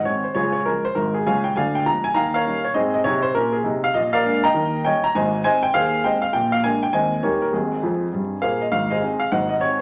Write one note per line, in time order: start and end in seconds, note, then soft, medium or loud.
0.05 0.22 D#3 soft
0.05 0.22 G#3 soft
0.05 0.23 C4 soft
0.05 0.25 C#5 medium
0.24 0.36 C5 medium
0.35 0.61 C#2 medium
0.35 0.61 C#3 medium
0.35 0.54 F4 medium
0.35 0.54 G#4 medium
0.35 0.51 C#5 medium
0.52 0.65 C#5 medium
0.65 0.82 F3 soft
0.65 0.82 G#3 soft
0.65 0.83 C#4 soft
0.65 0.85 A#4 medium
0.85 0.96 C5 medium
0.95 1.21 G#1 medium
0.95 1.21 G#2 medium
0.95 1.15 A#4 medium
1.14 1.25 G#4 medium
1.26 1.50 C#2 medium
1.26 1.50 C#3 medium
1.26 1.44 C#5 medium
1.26 1.44 F5 medium
1.26 1.45 G#5 medium
1.44 1.55 G5 medium
1.56 1.81 D2 medium
1.56 1.81 D3 medium
1.56 1.74 D5 medium
1.56 1.74 F5 medium
1.56 1.75 G#5 medium
1.75 1.86 G5 medium
1.86 2.02 F3 soft
1.86 2.03 G#3 soft
1.86 2.03 B3 soft
1.86 2.05 A#5 loud
2.04 2.15 G#5 loud
2.14 2.41 D#2 medium
2.14 2.41 D#3 medium
2.14 2.33 F5 medium
2.14 2.34 G5 medium
2.14 2.34 A#5 loud
2.34 2.63 A#4 medium
2.34 2.63 C#5 medium
2.34 2.64 F5 medium
2.46 2.62 G3 soft
2.46 2.63 C#4 soft
2.46 2.63 D#4 soft
2.64 2.75 C#5 medium
2.74 2.99 G#2 medium
2.74 3.00 C4 medium
2.74 2.93 G#4 medium
2.74 2.93 C5 medium
2.74 2.92 D#5 medium
2.94 3.05 D#5 medium
3.04 3.29 C3 medium
3.04 3.30 D#4 medium
3.04 3.24 C#5 medium
3.23 3.34 C5 medium
3.34 3.58 A#2 medium
3.34 3.59 C#4 medium
3.34 3.54 A#4 loud
3.53 3.64 G#4 medium
3.64 3.88 C3 medium
3.64 3.89 D#4 medium
3.84 3.95 F5 medium
3.94 4.20 A#1 medium
3.94 4.20 A#2 medium
3.94 4.14 D#5 medium
4.13 4.42 A#4 medium
4.13 4.42 D5 medium
4.13 4.43 F5 loud
4.25 4.41 G#3 soft
4.25 4.42 A#3 soft
4.25 4.42 D4 medium
4.44 4.82 D#5 medium
4.44 4.82 G5 medium
4.44 4.84 A#5 loud
4.54 4.80 D#2 medium
4.54 4.80 D#3 medium
4.85 5.01 G3 soft
4.85 5.02 C#4 soft
4.85 5.02 D#4 soft
4.85 5.03 C#5 medium
4.85 5.03 D#5 medium
4.85 5.04 G5 loud
5.04 5.14 A#5 loud
5.15 5.40 G#1 medium
5.15 5.40 G#2 medium
5.15 5.43 C5 medium
5.15 5.43 D#5 medium
5.15 5.43 G#5 medium
5.44 5.61 G#3 soft
5.44 5.61 C4 soft
5.44 5.62 D#4 soft
5.44 5.62 C5 medium
5.44 5.63 D#5 medium
5.44 5.63 G#5 loud
5.63 5.74 G5 loud
5.74 5.99 D#2 medium
5.74 5.99 D#3 medium
5.74 6.02 G#4 medium
5.74 6.02 C5 medium
5.74 6.04 F5 loud
6.04 6.21 G#3 soft
6.04 6.21 C4 soft
6.04 6.21 D#4 soft
6.04 6.23 C5 medium
6.04 6.23 D#5 medium
6.04 6.23 G5 medium
6.22 6.33 F5 medium
6.33 6.59 A#1 medium
6.33 6.59 A#2 medium
6.33 6.53 G5 medium
6.52 6.63 F5 medium
6.64 6.81 G#3 soft
6.64 6.81 A#3 soft
6.64 6.82 D4 soft
6.64 6.83 G#5 loud
6.83 6.93 G5 medium
6.93 7.19 D#2 medium
6.93 7.19 D#3 medium
6.93 7.10 G#3 soft
6.93 7.10 C4 soft
6.93 7.10 D#4 soft
6.93 7.22 C5 medium
6.93 7.22 D#5 medium
6.93 7.23 G#5 medium
7.23 7.49 D#2 medium
7.23 7.48 D#3 medium
7.23 7.40 G3 soft
7.23 7.40 A#3 soft
7.23 7.41 D#4 soft
7.23 7.41 G4 medium
7.23 7.40 A#4 medium
7.23 7.42 C#5 medium
7.42 7.53 A#4 medium
7.53 7.79 G#1 medium
7.53 7.79 G#2 medium
7.53 8.39 C4 soft
7.53 8.39 D#4 soft
7.53 8.41 G#4 medium
7.82 8.05 F2 medium
7.82 8.06 F3 medium
8.13 8.36 G2 soft
8.13 8.35 G3 medium
8.42 8.65 A#2 medium
8.42 8.64 A#3 soft
8.42 8.61 G#4 medium
8.42 8.61 C5 medium
8.42 8.61 F5 medium
8.61 8.72 D#5 medium
8.72 8.98 G#1 medium
8.72 8.97 G#2 medium
8.72 8.91 F5 medium
8.90 9.19 G#4 medium
8.90 9.19 C5 medium
8.90 9.21 D#5 medium
9.02 9.18 G#3 soft
9.02 9.19 C4 soft
9.02 9.19 D#4 soft
9.20 9.31 F5 medium
9.32 9.57 G#1 medium
9.32 9.58 G#2 medium
9.32 9.50 C5 medium
9.32 9.48 D#5 medium
9.32 9.51 F#5 medium
9.49 9.61 D#5 medium
9.61 9.78 G#3 soft
9.61 9.78 C4 soft
9.61 9.79 D#4 soft
9.61 9.81 C#5 medium